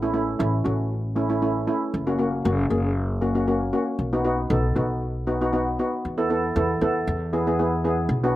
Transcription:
Already playing: A1
0.02 A3 C#4 E4
0.14 A3 C#4 E4
0.39 A1 A3 C#4 E4
0.64 A1 A3 C#4 F#4
1.16 A3 C#4 E4
1.29 A3 C#4 E4
1.42 A3 C#4 E4
1.67 A3 C#4 E4
1.94 F#1
2.07 A#3 C#4 F#4
2.19 A#3 C#4 F#4
2.45 F#1 A#3 C#4 F#4
2.70 F#1 A#3 C#4 G#4
3.21 A#3 C#4 F#4
3.35 A#3 C#4 F#4
3.48 A#3 C#4 F#4
3.73 A#3 C#4 F#4
3.99 B1
4.13 B3 D#4 F#4
4.24 B3 D#4 F#4
4.50 B1 B3 D#4 A4
4.75 B1 B3 D#4 F#4
5.27 B3 D#4 F#4
5.41 B3 D#4 F#4
5.53 B3 D#4 F#4
5.79 B3 D#4 F#4
6.05 E2
6.18 B3 E4 A4
6.30 B3 E4 A4
6.56 E2 B3 E4 A4
6.81 E2 B3 E4 A4
7.07 E2
7.33 B3 E4 G#4
7.47 B3 E4 G#4
7.59 B3 E4 G#4
7.84 B3 E4 G#4
8.09 B1
8.24 B3 D4 F#4

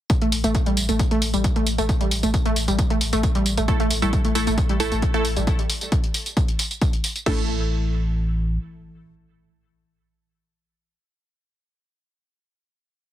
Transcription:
0.10 kick, closed hi-hat, tambourine
0.22 A1 A3, closed hi-hat
0.32 A1, open hi-hat, tambourine
0.44 A1 A3, closed hi-hat, tambourine
0.55 kick, closed hi-hat, tambourine
0.66 A1 G3, closed hi-hat
0.77 A1, open hi-hat, tambourine
0.89 A1 A3, closed hi-hat, tambourine
0.99 kick, closed hi-hat, tambourine
1.11 A1 A3, closed hi-hat
1.22 A1, open hi-hat, tambourine
1.34 A1 G3, closed hi-hat, tambourine
1.44 kick, closed hi-hat, tambourine
1.56 A1 A3, closed hi-hat
1.67 A1, open hi-hat, tambourine
1.78 A1 A3, closed hi-hat, tambourine
1.89 kick, closed hi-hat, tambourine
2.01 A1 G3, closed hi-hat
2.11 A1, open hi-hat, tambourine
2.23 A1 A3, closed hi-hat, tambourine
2.34 kick, closed hi-hat, tambourine
2.46 A1 A3, closed hi-hat
2.56 A1, open hi-hat, tambourine
2.68 A1 G3, closed hi-hat, tambourine
2.79 kick, closed hi-hat, tambourine
2.90 A1 A3, closed hi-hat
3.01 A1, open hi-hat, tambourine
3.13 A1 A3, closed hi-hat, tambourine
3.23 kick, closed hi-hat, tambourine
3.35 A1 G3, closed hi-hat
3.46 A1, open hi-hat, tambourine
3.57 A1 A3, closed hi-hat, tambourine
3.68 A3 E4 A4, kick, closed hi-hat, tambourine
3.80 A1 A3, closed hi-hat
3.91 A1, open hi-hat, tambourine
4.02 A1 G3 A3 E4 A4, closed hi-hat, tambourine
4.13 kick, closed hi-hat, tambourine
4.25 A1 A3, closed hi-hat
4.35 A1 A3 E4 A4, open hi-hat, tambourine
4.47 A1 A3, closed hi-hat, tambourine
4.58 kick, closed hi-hat, tambourine
4.69 A1 G3, closed hi-hat
4.80 A1 A3 E4 A4, open hi-hat, tambourine
4.92 A1 A3, closed hi-hat, tambourine
5.02 kick, closed hi-hat, tambourine
5.14 A1 A3 E4 A4, closed hi-hat
5.25 A1, open hi-hat, tambourine
5.37 A1 G3, closed hi-hat, tambourine
5.47 kick, closed hi-hat, tambourine
5.59 closed hi-hat
5.70 open hi-hat, tambourine
5.81 closed hi-hat, tambourine
5.92 kick, closed hi-hat, tambourine
6.04 closed hi-hat
6.14 open hi-hat, tambourine
6.26 closed hi-hat, tambourine
6.37 kick, closed hi-hat, tambourine
6.48 closed hi-hat
6.59 open hi-hat, tambourine
6.71 closed hi-hat, tambourine
6.81 kick, closed hi-hat, tambourine
6.93 closed hi-hat
7.04 open hi-hat, tambourine
7.16 closed hi-hat, tambourine
7.26 A1 A3 E4 A4, kick, snare, crash

